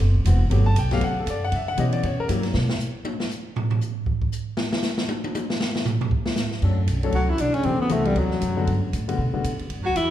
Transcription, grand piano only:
0.26 0.39 E3 medium
0.26 0.39 B3 medium
0.26 0.39 C4 medium
0.26 0.40 F#4 medium
0.50 0.64 F#3 medium
0.50 0.64 A3 medium
0.50 0.64 B3 medium
0.50 0.65 G4 medium
0.66 0.76 A5 loud
0.79 0.92 G5 medium
0.91 1.00 F#3 medium
0.91 1.01 A3 medium
0.91 1.01 B3 medium
0.91 1.01 G4 medium
0.91 1.02 F5 loud
1.04 1.17 F#5 loud
1.20 1.28 A4 medium
1.30 1.43 D5 medium
1.44 1.53 F#5 loud
1.55 1.68 E5 medium
1.68 1.78 F#5 loud
1.77 2.03 E3 medium
1.77 2.03 B3 medium
1.77 2.04 C#4 medium
1.77 2.04 G4 medium
1.77 1.93 D#5 medium
1.93 2.03 D5 medium
2.05 2.19 C#5 medium
2.20 2.26 A#4 loud
2.28 2.42 F#3 medium
2.28 2.43 A#3 medium
2.28 2.43 E4 medium
2.28 2.43 G4 medium
6.63 6.77 F#3 medium
6.63 6.77 A3 medium
6.63 6.77 C#4 medium
6.63 6.77 D4 medium
6.63 6.77 A4 medium
7.03 7.13 F#3 medium
7.03 7.13 A3 medium
7.03 7.13 C#4 medium
7.03 7.13 D4 medium
7.03 7.13 A4 medium
7.65 7.79 E3 medium
7.65 7.79 A3 medium
7.65 7.79 B3 medium
7.65 7.79 C4 medium
7.65 7.79 G4 medium
7.90 8.16 E3 medium
7.90 8.16 A3 medium
7.90 8.16 B3 medium
7.90 8.16 C4 medium
7.90 8.16 F#4 medium
8.56 8.66 D3 medium
8.56 8.66 G3 medium
8.56 8.66 A3 medium
8.56 8.66 B3 medium
8.56 8.66 F#4 medium
9.08 9.17 D3 medium
9.08 9.18 G3 medium
9.08 9.18 A3 medium
9.08 9.18 B3 medium
9.08 9.18 F#4 medium
9.33 9.43 D3 medium
9.33 9.43 G3 medium
9.33 9.43 A3 medium
9.33 9.43 B3 medium
9.33 9.43 F#4 medium

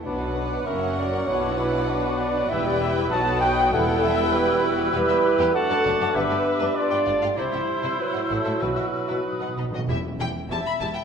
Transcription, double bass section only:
0.05 0.63 B1 soft
0.67 1.28 F#1 medium
1.29 2.49 B1 medium
2.51 3.10 E1 medium
3.11 3.71 B1 medium
3.72 4.93 E1 medium
4.94 5.00 E1 medium
5.86 5.92 F#1 medium
6.16 6.22 G1 medium
7.08 7.14 G1 medium
7.38 7.44 C2 medium
8.31 8.37 A1 medium
8.63 8.69 B1 medium
9.58 9.64 B1 medium
9.89 9.97 E1 medium
10.19 10.27 E1 medium
10.50 10.58 E1 medium
10.81 10.89 E1 medium

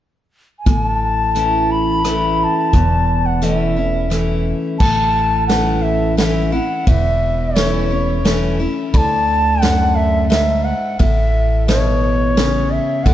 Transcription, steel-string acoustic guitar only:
0.66 1.97 A2 medium
1.35 2.01 E3 medium
1.35 2.01 A3 medium
1.35 2.01 C#4 medium
1.35 2.01 E4 medium
2.04 2.70 E3 soft
2.04 2.70 A3 medium
2.04 2.71 C#4 medium
2.04 2.71 E4 medium
2.73 4.04 E2 medium
3.42 3.75 E3 soft
3.42 3.75 A3 medium
3.42 3.76 C#4 medium
3.42 3.75 E4 medium
3.76 4.10 C#4 soft
3.76 4.10 E4 soft
4.10 4.76 E3 soft
4.10 4.77 A3 medium
4.10 4.77 C#4 medium
4.10 4.77 E4 medium
4.80 6.11 A2 medium
5.49 6.14 E3 medium
5.49 6.15 A3 medium
5.49 6.15 C#4 medium
5.49 6.15 E4 medium
6.17 6.51 E3 medium
6.17 6.51 A3 medium
6.17 6.51 C#4 medium
6.17 6.51 E4 medium
6.52 6.87 C#4 soft
6.52 6.85 E4 medium
6.87 8.18 E2 medium
7.55 7.89 E3 medium
7.55 7.89 A3 medium
7.55 7.89 C#4 medium
7.55 7.89 E4 medium
7.90 8.24 C#4 soft
7.90 8.23 E4 soft
8.25 8.58 E3 medium
8.25 8.58 A3 medium
8.25 8.58 C#4 medium
8.25 8.59 E4 medium
8.60 8.93 C#4 soft
8.60 8.92 E4 medium
8.94 10.24 D3 medium
9.62 10.28 F#2 medium
10.30 10.96 G#2 medium
10.99 12.30 A2 medium
11.68 12.34 B2 medium
12.37 13.02 C#3 medium
13.06 13.14 D3 medium

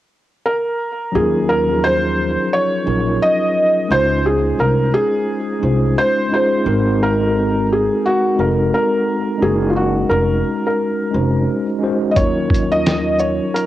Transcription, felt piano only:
0.46 1.16 A#4 medium
1.15 1.50 G#4 medium
1.49 1.84 A#4 loud
1.84 2.48 C5 loud
2.53 3.17 C#5 loud
3.22 3.86 D#5 loud
3.92 4.22 C5 loud
4.26 4.57 G#4 medium
4.60 4.91 A#4 medium
4.94 5.93 G#4 loud
5.98 6.32 C5 loud
6.34 7.03 C5 medium
7.03 7.66 A#4 medium
7.72 8.06 G#4 medium
8.06 8.36 F#4 loud
8.40 8.73 A#4 medium
8.74 9.44 A#4 medium
9.42 9.69 G#4 medium
9.70 9.75 F4 medium
9.76 10.08 F#4 medium
10.09 10.65 A#4 medium
10.67 11.66 A#4 medium
12.11 12.17 D#5 medium
12.16 12.74 C#5 medium
12.72 13.21 D#5 loud
13.20 13.55 C#5 medium
13.54 13.66 A#4 medium

